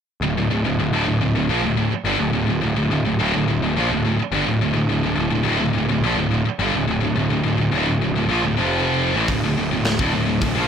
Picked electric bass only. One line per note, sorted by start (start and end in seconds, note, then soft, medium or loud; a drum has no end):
0.21 0.35 D1 medium
0.35 0.49 D1 medium
0.50 0.64 D1 medium
0.66 0.78 D1 medium
0.79 0.92 D1 medium
0.92 1.06 D1 medium
1.07 1.20 D1 medium
1.22 1.35 D1 medium
1.36 1.49 D1 medium
1.50 1.62 A#1 medium
1.62 1.76 D1 medium
1.77 1.90 D1 medium
1.91 muted picked electric bass stroke soft
2.04 2.18 G1 medium
2.18 2.33 D1 medium
2.33 2.46 D1 medium
2.47 2.61 D1 medium
2.63 2.75 D1 medium
2.76 2.88 D1 medium
2.89 3.03 D1 medium
3.05 3.18 D1 medium
3.19 3.33 D1 medium
3.35 3.48 D1 medium
3.49 3.62 D1 medium
3.62 3.75 D1 medium
3.77 3.89 A#1 medium
3.90 4.04 D1 medium
4.04 4.18 D1 medium
4.20 muted picked electric bass stroke soft
4.32 4.46 G1 loud
4.47 4.60 D1 medium
4.61 4.75 D1 medium
4.75 4.89 D1 medium
4.89 5.02 D1 medium
5.03 5.16 D1 medium
5.16 5.30 D1 medium
5.30 5.44 D1 medium
5.44 5.59 D1 medium
5.59 5.73 D1 medium
5.73 5.87 D1 medium
5.89 6.01 D1 medium
6.01 6.14 A#1 loud
6.15 6.28 D1 medium
6.29 6.43 D1 medium
6.45 muted picked electric bass stroke soft
6.59 6.73 G1 loud
6.74 6.87 D1 medium
6.87 7.01 D1 medium
7.02 7.15 D1 medium
7.16 7.29 D1 medium
7.30 7.42 D1 medium
7.43 7.57 D1 medium
7.58 7.71 D1 medium
7.71 7.85 D1 medium
7.87 7.98 D1 medium
7.99 8.12 D1 medium
8.12 8.27 D1 medium
8.28 8.42 A#1 medium
8.43 8.56 D1 medium
8.58 9.10 F1 medium
9.14 9.27 A1 medium
9.28 9.42 D1 medium
9.44 9.57 D1 medium
9.57 9.70 D1 medium
9.72 9.84 D1 medium
9.85 9.98 D1 medium
10.00 10.13 D1 medium
10.14 10.27 D1 medium
10.27 10.41 D1 medium
10.42 10.55 D1 medium
10.56 10.68 A#1 medium